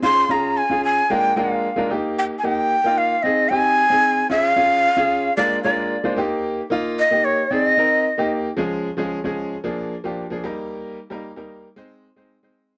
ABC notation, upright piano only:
X:1
M:4/4
L:1/16
Q:1/4=113
K:Ebmix
V:1 name="Upright piano"
[DFA] z [DFA]2 z [DFA]2 z [A,B,=DFB] z [A,B,DFB]2 z [A,B,DFB] [B,EG]2- | [B,EG] z [B,EG]2 z [B,EF]2 z [CEA] z [CEG]2 z [CEA]2 z | [DFA] z [DFA]2 z [DFA]2 z [A,B,=DFB] z [A,B,DFB]2 z [A,B,DFc] [B,EG]2- | [B,EG] z [B,EF]2 z [B,EG]2 z [CEA] z [CEB]2 z [B,EG]2 z |
[F,A,DA]2 z [F,A,DA] z [F,A,DA]2 z [F,B,=DA]2 z [F,B,DG] z [F,B,DA] [G,B,EB]2- | [G,B,EB]2 z [G,B,EB] z [G,B,EB]2 z [A,CEc]2 z [A,CEc] z [A,CEc]2 z |]